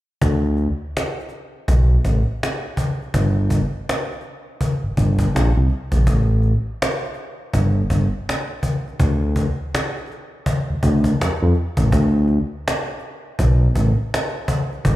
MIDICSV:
0, 0, Header, 1, 3, 480
1, 0, Start_track
1, 0, Tempo, 731707
1, 142, Time_signature, 4, 2, 24, 8
1, 9813, End_track
2, 0, Start_track
2, 0, Title_t, "Analog synth bass"
2, 0, Program_c, 0, 38
2, 146, Note_on_c, 0, 38, 98
2, 444, Note_off_c, 0, 38, 0
2, 1107, Note_on_c, 0, 35, 85
2, 1294, Note_off_c, 0, 35, 0
2, 1346, Note_on_c, 0, 33, 81
2, 1456, Note_off_c, 0, 33, 0
2, 2066, Note_on_c, 0, 31, 96
2, 2364, Note_off_c, 0, 31, 0
2, 3170, Note_on_c, 0, 31, 44
2, 3207, Note_off_c, 0, 31, 0
2, 3267, Note_on_c, 0, 31, 95
2, 3454, Note_off_c, 0, 31, 0
2, 3512, Note_on_c, 0, 34, 105
2, 3620, Note_off_c, 0, 34, 0
2, 3653, Note_on_c, 0, 36, 83
2, 3726, Note_off_c, 0, 36, 0
2, 3887, Note_on_c, 0, 34, 75
2, 3963, Note_off_c, 0, 34, 0
2, 3986, Note_on_c, 0, 33, 96
2, 4285, Note_off_c, 0, 33, 0
2, 4947, Note_on_c, 0, 31, 96
2, 5134, Note_off_c, 0, 31, 0
2, 5188, Note_on_c, 0, 31, 75
2, 5297, Note_off_c, 0, 31, 0
2, 5905, Note_on_c, 0, 38, 102
2, 6204, Note_off_c, 0, 38, 0
2, 7015, Note_on_c, 0, 38, 43
2, 7051, Note_off_c, 0, 38, 0
2, 7107, Note_on_c, 0, 38, 78
2, 7294, Note_off_c, 0, 38, 0
2, 7350, Note_on_c, 0, 41, 47
2, 7405, Note_off_c, 0, 41, 0
2, 7494, Note_on_c, 0, 41, 89
2, 7567, Note_off_c, 0, 41, 0
2, 7726, Note_on_c, 0, 33, 81
2, 7802, Note_off_c, 0, 33, 0
2, 7826, Note_on_c, 0, 38, 98
2, 8125, Note_off_c, 0, 38, 0
2, 8787, Note_on_c, 0, 35, 100
2, 8973, Note_off_c, 0, 35, 0
2, 9029, Note_on_c, 0, 33, 85
2, 9138, Note_off_c, 0, 33, 0
2, 9745, Note_on_c, 0, 31, 102
2, 9813, Note_off_c, 0, 31, 0
2, 9813, End_track
3, 0, Start_track
3, 0, Title_t, "Cajon"
3, 141, Note_on_c, 9, 36, 91
3, 207, Note_off_c, 9, 36, 0
3, 371, Note_on_c, 9, 38, 31
3, 436, Note_off_c, 9, 38, 0
3, 634, Note_on_c, 9, 38, 94
3, 700, Note_off_c, 9, 38, 0
3, 785, Note_on_c, 9, 38, 25
3, 844, Note_off_c, 9, 38, 0
3, 844, Note_on_c, 9, 38, 34
3, 909, Note_off_c, 9, 38, 0
3, 1102, Note_on_c, 9, 36, 84
3, 1168, Note_off_c, 9, 36, 0
3, 1342, Note_on_c, 9, 36, 70
3, 1408, Note_off_c, 9, 36, 0
3, 1596, Note_on_c, 9, 38, 83
3, 1661, Note_off_c, 9, 38, 0
3, 1819, Note_on_c, 9, 36, 74
3, 1884, Note_off_c, 9, 36, 0
3, 1983, Note_on_c, 9, 38, 26
3, 2049, Note_off_c, 9, 38, 0
3, 2060, Note_on_c, 9, 36, 101
3, 2126, Note_off_c, 9, 36, 0
3, 2298, Note_on_c, 9, 36, 78
3, 2364, Note_off_c, 9, 36, 0
3, 2554, Note_on_c, 9, 38, 92
3, 2620, Note_off_c, 9, 38, 0
3, 2704, Note_on_c, 9, 38, 26
3, 2762, Note_off_c, 9, 38, 0
3, 2762, Note_on_c, 9, 38, 32
3, 2827, Note_off_c, 9, 38, 0
3, 3022, Note_on_c, 9, 36, 77
3, 3087, Note_off_c, 9, 36, 0
3, 3262, Note_on_c, 9, 36, 76
3, 3328, Note_off_c, 9, 36, 0
3, 3402, Note_on_c, 9, 36, 75
3, 3468, Note_off_c, 9, 36, 0
3, 3517, Note_on_c, 9, 38, 82
3, 3582, Note_off_c, 9, 38, 0
3, 3738, Note_on_c, 9, 38, 27
3, 3804, Note_off_c, 9, 38, 0
3, 3882, Note_on_c, 9, 36, 73
3, 3904, Note_on_c, 9, 38, 23
3, 3948, Note_off_c, 9, 36, 0
3, 3969, Note_off_c, 9, 38, 0
3, 3982, Note_on_c, 9, 36, 97
3, 4047, Note_off_c, 9, 36, 0
3, 4212, Note_on_c, 9, 38, 30
3, 4278, Note_off_c, 9, 38, 0
3, 4475, Note_on_c, 9, 38, 104
3, 4541, Note_off_c, 9, 38, 0
3, 4622, Note_on_c, 9, 38, 27
3, 4684, Note_off_c, 9, 38, 0
3, 4684, Note_on_c, 9, 38, 35
3, 4749, Note_off_c, 9, 38, 0
3, 4943, Note_on_c, 9, 36, 86
3, 5009, Note_off_c, 9, 36, 0
3, 5183, Note_on_c, 9, 36, 77
3, 5249, Note_off_c, 9, 36, 0
3, 5439, Note_on_c, 9, 38, 85
3, 5505, Note_off_c, 9, 38, 0
3, 5660, Note_on_c, 9, 36, 70
3, 5725, Note_off_c, 9, 36, 0
3, 5823, Note_on_c, 9, 38, 28
3, 5888, Note_off_c, 9, 38, 0
3, 5901, Note_on_c, 9, 36, 86
3, 5967, Note_off_c, 9, 36, 0
3, 6139, Note_on_c, 9, 36, 72
3, 6205, Note_off_c, 9, 36, 0
3, 6393, Note_on_c, 9, 38, 99
3, 6459, Note_off_c, 9, 38, 0
3, 6540, Note_on_c, 9, 38, 29
3, 6601, Note_off_c, 9, 38, 0
3, 6601, Note_on_c, 9, 38, 35
3, 6634, Note_off_c, 9, 38, 0
3, 6634, Note_on_c, 9, 38, 35
3, 6700, Note_off_c, 9, 38, 0
3, 6863, Note_on_c, 9, 36, 89
3, 6928, Note_off_c, 9, 36, 0
3, 7103, Note_on_c, 9, 36, 79
3, 7168, Note_off_c, 9, 36, 0
3, 7242, Note_on_c, 9, 36, 73
3, 7262, Note_on_c, 9, 38, 30
3, 7308, Note_off_c, 9, 36, 0
3, 7328, Note_off_c, 9, 38, 0
3, 7356, Note_on_c, 9, 38, 84
3, 7422, Note_off_c, 9, 38, 0
3, 7577, Note_on_c, 9, 38, 30
3, 7642, Note_off_c, 9, 38, 0
3, 7721, Note_on_c, 9, 36, 83
3, 7739, Note_on_c, 9, 38, 26
3, 7787, Note_off_c, 9, 36, 0
3, 7805, Note_off_c, 9, 38, 0
3, 7822, Note_on_c, 9, 36, 89
3, 7888, Note_off_c, 9, 36, 0
3, 8054, Note_on_c, 9, 38, 35
3, 8119, Note_off_c, 9, 38, 0
3, 8316, Note_on_c, 9, 38, 92
3, 8381, Note_off_c, 9, 38, 0
3, 8463, Note_on_c, 9, 38, 27
3, 8522, Note_off_c, 9, 38, 0
3, 8522, Note_on_c, 9, 38, 36
3, 8588, Note_off_c, 9, 38, 0
3, 8783, Note_on_c, 9, 36, 82
3, 8848, Note_off_c, 9, 36, 0
3, 9023, Note_on_c, 9, 36, 76
3, 9089, Note_off_c, 9, 36, 0
3, 9276, Note_on_c, 9, 38, 92
3, 9341, Note_off_c, 9, 38, 0
3, 9499, Note_on_c, 9, 36, 87
3, 9565, Note_off_c, 9, 36, 0
3, 9661, Note_on_c, 9, 38, 27
3, 9727, Note_off_c, 9, 38, 0
3, 9741, Note_on_c, 9, 36, 98
3, 9806, Note_off_c, 9, 36, 0
3, 9813, End_track
0, 0, End_of_file